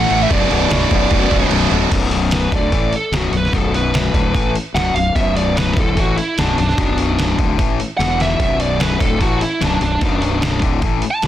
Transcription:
Already playing: distorted electric guitar A2 E3 A3, overdriven electric guitar E3 A3, lead electric guitar F#5
0.10 fingered electric bass A1, overdriven electric guitar A2 E3 A3, crash
0.23 lead electric guitar E5
0.30 fingered electric bass B0, overdriven electric guitar B1 F#2 B2, lead electric guitar D5, kick, crash
0.51 fingered electric bass B0, overdriven electric guitar B1 F#2 B2, crash
0.69 fingered electric bass B0, overdriven electric guitar B1 F#2 B2, snare, crash
0.90 fingered electric bass B0, overdriven electric guitar B1 F#2 B2, kick, crash
1.09 fingered electric bass B0, overdriven electric guitar B1 F#2 B2, kick, crash
1.30 fingered electric bass B0, overdriven electric guitar B1 F#2 B2, kick, snare, crash
1.50 fingered electric bass B0, overdriven electric guitar B1 F#2 B2, crash
1.71 fingered electric bass D1, overdriven electric guitar B1 F#2 B2, crash
1.91 fingered electric bass B0, overdriven electric guitar B1 F#2 B2, kick, open hi-hat, crash
2.11 open hi-hat
2.31 lead electric guitar B4, snare, open hi-hat
2.52 fingered electric bass D1, overdriven electric guitar D2 A2 D3, kick, open hi-hat
2.56 lead electric guitar D5
2.71 fingered electric bass A1, overdriven electric guitar A2 E3 A3, kick, open hi-hat
2.93 lead electric guitar A4, open hi-hat
3.11 fingered electric bass B0, overdriven electric guitar B1 F#2 B2, snare, open hi-hat
3.17 lead electric guitar F#4
3.31 fingered electric bass B0, overdriven electric guitar B1 F#2, open hi-hat
3.37 lead electric guitar B4
3.45 snare
3.53 fingered electric bass B0, overdriven electric guitar B1 F#2 B2, kick, open hi-hat
3.57 lead electric guitar A4
3.74 lead electric guitar B4, open hi-hat
3.94 snare, open hi-hat
4.13 fingered electric bass D1, overdriven electric guitar D2 A2 D3, kick, open hi-hat
4.34 fingered electric bass A1, overdriven electric guitar A2 E3 A3, kick, open hi-hat
4.55 open hi-hat
4.74 fingered electric bass B0, overdriven electric guitar B1 F#2 B2, lead electric guitar F#5, snare, open hi-hat
4.94 fingered electric bass B0, overdriven electric guitar B1 F#2, lead electric guitar F5, open hi-hat
5.15 fingered electric bass B0, overdriven electric guitar B1 F#2 B2, lead electric guitar E5, kick, open hi-hat
5.36 lead electric guitar D5, open hi-hat
5.57 lead electric guitar B4, snare, open hi-hat
5.76 fingered electric bass D1, overdriven electric guitar D2 A2 D3, kick, open hi-hat
5.80 lead electric guitar A4
5.96 fingered electric bass A1, overdriven electric guitar A2 E3 A3, lead electric guitar F#4, kick, open hi-hat
6.18 lead electric guitar E4, open hi-hat
6.38 fingered electric bass B0, overdriven electric guitar B1 F#2 B2, lead electric guitar D4, snare, open hi-hat
6.57 fingered electric bass B0, overdriven electric guitar B1 F#2, lead electric guitar D4, open hi-hat
6.69 snare
6.77 fingered electric bass B0, overdriven electric guitar B1 F#2 B2, kick, open hi-hat
6.98 open hi-hat
7.19 snare, open hi-hat
7.39 fingered electric bass D1, overdriven electric guitar D2 A2 D3, kick, open hi-hat
7.58 fingered electric bass A1, overdriven electric guitar A2 E3 A3, kick, open hi-hat
7.80 open hi-hat
7.97 fingered electric bass E1, overdriven electric guitar E2 B2 E3, lead electric guitar F#5, snare, open hi-hat
8.20 lead electric guitar E5, snare, open hi-hat
8.38 fingered electric bass B0, overdriven electric guitar B1 F#2 B2, lead electric guitar E5, kick, open hi-hat
8.60 lead electric guitar D5, open hi-hat
8.80 lead electric guitar B4, snare, open hi-hat
8.99 fingered electric bass D1, overdriven electric guitar D2 A2 D3, lead electric guitar A4, kick, open hi-hat
9.20 fingered electric bass A1, overdriven electric guitar A2 E3 A3, lead electric guitar F#4, kick, open hi-hat
9.41 lead electric guitar E4, open hi-hat
9.61 fingered electric bass B0, overdriven electric guitar B1 F#2 B2, snare, open hi-hat
9.65 lead electric guitar D4
9.81 fingered electric bass B0, overdriven electric guitar B1 F#2, lead electric guitar D4, open hi-hat
10.01 fingered electric bass B0, overdriven electric guitar B1 F#2 B2, kick, open hi-hat
10.22 open hi-hat
10.42 snare, open hi-hat
10.62 fingered electric bass D1, overdriven electric guitar D2 A2 D3, kick, open hi-hat
10.82 fingered electric bass A1, overdriven electric guitar A2 E3 A3, kick, open hi-hat
11.02 open hi-hat
11.11 lead electric guitar A5
11.22 fingered electric bass B0, overdriven electric guitar B1 F#2 B2, snare, open hi-hat

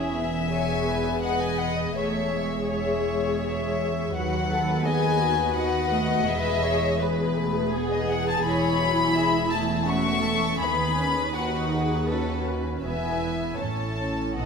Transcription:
Already playing: double bass section E1, cello section E2, viola section C#4 E4, violin section G#4 E5
0.14 viola section B3
0.50 viola section G#4, violin section C#5 G#5
0.89 violin section B4
1.22 viola section G#4, violin section B4 D#5 F#5
1.40 violin section G#5
1.57 violin section F#5
1.76 violin section D#5
1.95 double bass section E1, cello section E2, viola section A3, violin section C#5 E5
2.33 viola section G#3
2.69 violin section C#5 E5
3.44 violin section E5
4.13 double bass section D#2, cello section D#2, viola section F#3 F#4, violin section B4
4.17 violin section F#5
4.50 viola section A4
4.84 viola section B3 G#4, violin section D#5 G#5
5.21 viola section F#4
5.53 violin section D#5 F#5
5.57 viola section B3 F#4
5.92 viola section A3
6.27 double bass section E1, cello section E2, viola section G#3 G#4, violin section B4 E5
6.64 violin section C#5
7.00 viola section G#3 G#4, violin section B4
7.36 viola section A3
7.73 viola section B3, violin section G#4
7.92 violin section D#5
8.09 violin section F#5
8.29 violin section A5
8.43 double bass section E1, cello section E2, viola section G#3 E4, violin section C#5 B5
8.80 viola section F#3
9.15 viola section G#3, violin section G#4 E5
9.51 viola section A3, violin section A5
9.86 viola section A3 C#4, violin section F#4 E5 C#6
10.23 violin section A4
10.59 double bass section D#2, viola section D#4, violin section G#4 B4 B5
10.64 cello section D#2, viola section B3
10.99 viola section C#4
11.34 viola section D#4 F#4, violin section F#4 F#5
11.74 viola section G#4
12.06 viola section C#4 F#4, violin section A4 B4
12.47 violin section B4
12.83 double bass section E1, cello section E2, viola section B3 E4, violin section B4 E5 G#5
13.22 viola section B3
13.58 double bass section A1, cello section A2, viola section C#4 E4, violin section A4 C#5 A5
13.98 viola section C#4
14.36 double bass section B1, cello section B2, viola section B3 D#4, violin section A4 D#5 F#5

